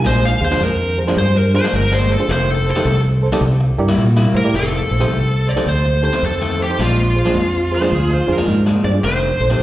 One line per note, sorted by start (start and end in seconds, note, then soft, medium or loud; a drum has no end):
0.05 0.32 A#1 medium
0.05 0.29 A#2 medium
0.05 0.29 F3 medium
0.05 0.29 G#3 medium
0.05 0.29 D4 loud
0.05 0.24 C5 medium
0.25 0.43 F5 medium
0.41 0.56 D#2 medium
0.41 0.46 G#4 medium
0.41 0.47 C5 medium
0.41 0.63 C5 medium
0.51 0.67 A#2 medium
0.51 0.67 F3 medium
0.51 0.67 G#3 medium
0.51 0.61 D4 medium
0.51 0.67 D4 loud
0.51 0.61 F4 medium
0.51 0.61 G#4 medium
0.51 0.61 C5 medium
0.61 1.02 F2 medium
0.61 0.98 A#4 loud
0.98 1.03 G#4 medium
0.98 1.03 C5 medium
1.07 1.17 A#2 medium
1.07 1.17 F3 medium
1.07 1.17 G#3 medium
1.07 1.17 D4 medium
1.07 1.17 D4 loud
1.07 1.17 F4 medium
1.07 1.17 G#4 medium
1.07 1.17 C5 medium
1.17 1.59 G2 medium
1.17 1.37 C5 loud
1.17 muted clean electric guitar stroke medium
1.36 1.55 A#4 loud
1.36 muted clean electric guitar stroke medium
1.54 1.64 D4 medium
1.54 1.64 F4 medium
1.54 1.64 G#4 medium
1.54 1.65 C5 medium
1.54 1.74 C5 loud
1.64 1.80 A#2 medium
1.64 1.80 F3 medium
1.64 1.80 G#3 medium
1.64 1.79 D4 medium
1.73 2.15 G1 loud
1.73 1.94 A#4 medium
1.92 2.14 A#2 medium
1.92 2.14 F3 medium
1.92 2.13 G#3 medium
1.92 2.13 D4 medium
1.92 2.11 C5 loud
2.09 2.15 G#4 medium
2.09 2.30 A4 medium
2.09 2.15 C5 medium
2.19 2.29 D4 medium
2.19 2.30 F4 medium
2.19 2.30 G#4 medium
2.19 2.30 C5 medium
2.29 2.71 F1 loud
2.29 2.54 F2 medium
2.29 2.54 D#3 loud
2.29 2.54 A3 loud
2.29 2.54 C4 medium
2.29 2.50 C5 loud
2.50 2.68 A4 medium
2.66 2.71 A4 medium
2.66 2.71 C5 medium
2.71 2.99 A4 loud
2.76 2.92 F2 medium
2.76 2.92 D#3 medium
2.76 2.91 A3 medium
2.76 2.91 C4 medium
2.76 2.86 D#4 medium
2.76 2.86 G4 medium
2.76 2.86 A4 medium
2.76 2.87 C5 medium
2.85 3.27 C2 medium
3.22 3.27 A4 loud
3.22 3.28 C5 loud
3.32 3.43 F2 medium
3.32 3.42 D#3 medium
3.32 3.42 A3 loud
3.32 3.42 C4 loud
3.32 3.42 D#4 medium
3.32 3.42 G4 medium
3.32 3.43 A4 medium
3.32 3.43 D5 medium
3.41 3.69 C2 medium
3.41 muted clean electric guitar stroke soft
3.61 muted clean electric guitar stroke medium
3.78 3.93 G2 medium
3.78 3.89 E4 medium
3.78 3.89 G4 medium
3.78 3.89 A#4 medium
3.78 3.89 D5 medium
3.88 4.04 C3 medium
3.88 4.04 G3 medium
3.88 4.04 A#3 loud
3.88 4.04 E4 loud
3.98 4.25 A#2 medium
4.17 4.39 C3 medium
4.17 4.38 G3 medium
4.17 4.38 A#3 medium
4.17 4.38 E4 loud
4.34 4.55 A2 loud
4.34 4.40 A#4 medium
4.34 4.56 A#4 medium
4.34 4.40 C5 loud
4.45 4.54 E4 medium
4.45 4.55 G4 medium
4.45 4.55 A#4 medium
4.45 4.55 D5 medium
4.54 4.81 F1 medium
4.54 4.78 F2 medium
4.54 4.79 D#3 medium
4.54 4.79 A3 medium
4.54 4.79 C4 medium
4.54 5.51 A4 loud
4.91 5.06 A#1 medium
4.91 4.96 A4 medium
4.91 4.96 C5 medium
5.00 5.17 F2 medium
5.00 5.16 D#3 medium
5.00 5.16 A3 medium
5.00 5.16 C4 medium
5.00 5.10 D#4 medium
5.00 5.10 G4 medium
5.00 5.11 A4 medium
5.00 5.11 C5 medium
5.11 5.52 C2 medium
5.46 5.52 A4 medium
5.46 5.52 C5 medium
5.46 5.66 D5 loud
5.56 5.66 F2 medium
5.56 5.66 D#3 medium
5.56 5.66 A3 medium
5.56 5.67 C4 medium
5.56 5.67 D#4 medium
5.56 5.67 G4 medium
5.56 5.67 A4 medium
5.56 5.67 C5 medium
5.66 6.08 D2 medium
5.66 6.04 C5 loud
5.66 muted clean electric guitar stroke soft
5.85 muted clean electric guitar stroke soft
6.02 6.13 D#4 medium
6.02 6.13 G4 medium
6.02 6.13 A4 medium
6.02 6.13 C5 medium
6.02 6.24 C5 medium
6.13 6.29 F2 medium
6.13 6.29 D#3 medium
6.13 6.29 A3 medium
6.13 6.28 C4 medium
6.23 6.64 F2 medium
6.23 6.62 A4 medium
6.41 6.63 F2 medium
6.41 6.63 D#3 medium
6.41 6.63 A3 medium
6.41 6.63 C4 medium
6.59 6.79 G4 medium
6.59 6.64 A4 medium
6.59 6.65 C5 medium
6.70 6.80 D#4 medium
6.70 6.80 G4 medium
6.70 6.80 A4 medium
6.70 6.80 C5 medium
6.79 7.21 A#1 medium
6.79 7.03 A#2 medium
6.79 7.03 F3 medium
6.79 7.04 G#3 medium
6.79 7.04 D4 medium
6.79 8.45 F4 medium
7.15 7.21 G#4 medium
7.15 7.21 C5 medium
7.25 7.42 A#2 medium
7.25 7.41 F3 medium
7.25 7.41 G#3 medium
7.25 7.35 D4 medium
7.25 7.41 D4 medium
7.25 7.35 F4 medium
7.25 7.35 G#4 medium
7.25 7.36 C5 medium
7.35 7.77 F2 medium
7.71 7.77 G#4 medium
7.71 7.77 C5 loud
7.76 7.93 C5 medium
7.81 7.91 A#2 medium
7.81 7.91 F3 medium
7.81 7.92 G#3 medium
7.81 7.91 D4 medium
7.81 7.92 D4 medium
7.81 7.91 F4 medium
7.81 7.91 G#4 medium
7.81 7.91 C5 medium
7.92 8.19 D2 medium
7.92 8.12 G#4 medium
7.92 muted clean electric guitar stroke soft
8.10 8.30 C5 medium
8.10 muted clean electric guitar stroke soft
8.28 8.43 F2 medium
8.28 8.38 D4 medium
8.28 8.38 F4 medium
8.28 8.38 G#4 medium
8.28 8.38 C5 medium
8.32 8.61 A#4 medium
8.38 8.54 A#2 medium
8.38 8.54 F3 medium
8.38 8.53 G#3 medium
8.38 8.53 D4 medium
8.48 8.75 G#2 medium
8.66 8.88 A#2 medium
8.66 8.88 F3 medium
8.66 8.88 G#3 medium
8.66 8.88 D4 medium
8.84 8.99 G2 medium
8.84 8.89 G#4 medium
8.84 8.90 C5 medium
8.84 8.90 D5 medium
8.94 9.04 D4 medium
8.94 9.04 F4 medium
8.94 9.04 G#4 medium
8.94 9.04 D5 medium
9.03 9.31 F1 medium
9.03 9.28 F2 medium
9.03 9.28 D#3 medium
9.03 9.28 A3 medium
9.03 9.28 C4 medium
9.03 9.63 C5 loud
9.40 9.55 A#1 medium
9.40 9.46 A4 medium
9.40 9.46 C5 medium
9.50 9.63 F2 medium
9.50 9.63 D#3 medium
9.50 9.63 A3 medium
9.50 9.63 C4 medium
9.50 9.61 D#4 medium
9.50 9.61 G4 medium
9.50 9.61 A4 medium
9.50 9.61 C5 medium